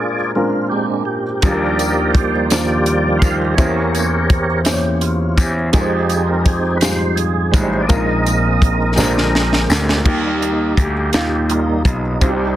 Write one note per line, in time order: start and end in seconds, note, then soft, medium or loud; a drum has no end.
0.00 0.31 A#2 medium
0.00 0.15 G#3 medium
0.00 0.15 C4 medium
0.00 0.18 D4 medium
0.00 0.15 F4 medium
0.00 0.32 F4 medium
0.00 0.32 G#4 medium
0.00 0.15 A#4 medium
0.00 0.31 D5 medium
0.35 1.23 G#3 medium
0.35 1.23 C4 soft
0.35 1.23 D4 medium
0.35 0.69 F4 medium
0.35 1.23 F4 soft
0.35 1.23 A#4 medium
0.70 1.04 G#3 soft
0.70 1.03 C4 soft
0.70 1.04 D4 soft
0.70 0.86 G4 medium
1.05 1.43 G4 medium
1.42 3.18 D#2 medium
1.42 2.47 D#3 medium
1.42 3.55 F3 soft
1.42 2.31 G3 medium
1.42 3.55 G3 soft
1.42 3.55 A#3 soft
1.42 2.31 D4 medium
1.42 2.31 D#4 medium
1.42 2.31 F4 medium
1.42 2.47 G4 medium
1.42 1.51 G#4 medium
1.42 2.17 A#4 medium
1.42 2.47 D5 medium
1.42 kick medium
1.42 closed hi-hat medium
1.42 tambourine soft
1.51 2.34 A#4 medium
1.79 closed hi-hat soft
1.79 tambourine medium
2.11 2.50 C5 medium
2.11 kick medium
2.11 closed hi-hat medium
2.49 3.38 G3 medium
2.49 3.38 D4 soft
2.49 3.38 D#4 soft
2.49 3.55 F4 medium
2.49 3.38 F4 medium
2.49 3.55 G4 medium
2.49 3.39 C5 medium
2.49 3.17 D5 medium
2.49 snare loud
2.49 closed hi-hat medium
2.49 tambourine medium
2.86 closed hi-hat medium
3.19 3.55 D#2 medium
3.19 3.36 F5 medium
3.19 kick medium
3.19 closed hi-hat medium
3.19 tambourine soft
3.55 5.34 E2 medium
3.55 4.06 E3 soft
3.55 4.62 E3 medium
3.55 4.45 A#3 medium
3.55 4.06 A#3 soft
3.55 4.45 C#4 medium
3.55 4.06 C#4 soft
3.55 4.45 E4 medium
3.55 4.62 G4 medium
3.55 4.46 G4 medium
3.55 4.62 A#4 medium
3.55 4.46 C5 medium
3.55 4.60 C#5 medium
3.55 kick loud
3.55 closed hi-hat medium
3.55 tambourine soft
3.95 closed hi-hat soft
3.95 tambourine soft
4.30 kick medium
4.30 closed hi-hat medium
4.64 5.53 A#3 medium
4.64 5.53 C#4 medium
4.64 5.53 E4 medium
4.64 5.02 G4 medium
4.64 5.53 G4 medium
4.64 4.73 C5 medium
4.64 snare loud
4.64 closed hi-hat medium
4.64 tambourine medium
4.73 5.57 C#5 medium
5.01 5.39 F4 medium
5.01 closed hi-hat medium
5.37 5.71 E2 medium
5.37 5.54 G4 medium
5.37 kick medium
5.37 closed hi-hat medium
5.37 tambourine soft
5.73 7.50 F2 loud
5.73 6.61 G#3 medium
5.73 6.78 G#3 soft
5.73 6.78 C4 medium
5.73 6.61 D#4 medium
5.73 6.78 D#4 medium
5.73 6.61 F4 medium
5.73 6.61 G4 medium
5.73 6.78 G4 soft
5.73 6.29 G#4 medium
5.73 5.81 A#4 medium
5.73 kick loud
5.73 closed hi-hat medium
5.73 tambourine soft
5.81 6.65 C5 medium
6.10 closed hi-hat soft
6.10 tambourine soft
6.27 6.46 A#4 medium
6.46 6.75 G#4 medium
6.46 kick loud
6.46 closed hi-hat medium
6.77 6.83 B4 medium
6.77 7.18 C5 medium
6.81 6.88 G3 soft
6.81 7.69 D#4 medium
6.81 7.69 F4 medium
6.81 7.69 G4 medium
6.81 7.70 C5 medium
6.81 snare loud
6.81 closed hi-hat medium
6.81 tambourine medium
6.88 7.72 G#3 medium
7.16 7.54 G#4 medium
7.16 closed hi-hat medium
7.51 7.87 A1 medium
7.51 7.85 G3 soft
7.51 7.85 G#3 soft
7.51 7.86 D#4 medium
7.51 7.82 C5 medium
7.51 kick medium
7.51 closed hi-hat medium
7.51 tambourine medium
7.81 7.89 D5 medium
7.87 8.94 A#1 loud
7.87 8.93 A#2 medium
7.87 8.92 G#3 soft
7.87 8.77 G#3 medium
7.87 8.77 A#3 medium
7.87 8.93 C4 soft
7.87 7.96 D4 soft
7.87 8.93 D#4 medium
7.87 8.77 F4 medium
7.87 9.65 A#4 medium
7.87 8.77 A#4 medium
7.87 9.64 D#5 medium
7.87 kick loud
7.87 closed hi-hat medium
7.87 tambourine soft
7.96 8.80 D#4 medium
8.26 closed hi-hat soft
8.26 tambourine medium
8.62 kick medium
8.62 closed hi-hat medium
8.95 9.66 A#1 medium
8.95 10.02 A#2 medium
8.95 10.01 D3 medium
8.95 10.01 G#3 soft
8.95 9.85 G#3 medium
8.95 10.01 C4 soft
8.95 9.85 C4 medium
8.95 9.85 D4 medium
8.95 10.00 G4 soft
8.95 9.85 G4 medium
8.95 9.85 A#4 medium
8.95 tambourine medium
8.99 snare soft
9.18 snare soft
9.35 snare medium
9.53 snare medium
9.69 10.03 D2 medium
9.69 snare medium
9.69 tambourine soft
9.89 snare medium
10.05 10.74 D#2 medium
10.05 10.53 G3 soft
10.05 11.10 G3 medium
10.05 10.93 A#3 medium
10.05 10.54 A#3 soft
10.05 10.93 D#4 medium
10.05 10.40 D#4 soft
10.05 10.93 G4 medium
10.05 kick medium
10.05 crash medium
10.41 10.79 D#4 medium
10.41 closed hi-hat soft
10.77 11.11 D2 medium
10.77 11.52 G4 medium
10.77 kick medium
10.77 closed hi-hat medium
11.13 12.01 A#3 medium
11.13 12.01 D#4 soft
11.13 12.01 F4 medium
11.13 snare medium
11.13 closed hi-hat medium
11.49 11.82 G3 soft
11.49 11.83 A#3 soft
11.49 11.83 D#4 soft
11.49 11.65 F4 medium
11.49 closed hi-hat medium
11.85 12.18 B1 medium
11.85 12.22 D#4 medium
11.85 kick medium
11.85 closed hi-hat medium
12.20 12.56 C2 medium
12.20 12.56 C3 medium
12.20 12.56 G3 soft
12.20 12.56 C4 medium
12.20 12.56 C4 soft
12.20 12.56 D#4 medium
12.20 12.29 F4 medium
12.20 12.56 G4 medium
12.20 kick medium
12.20 closed hi-hat medium
12.29 12.56 G4 medium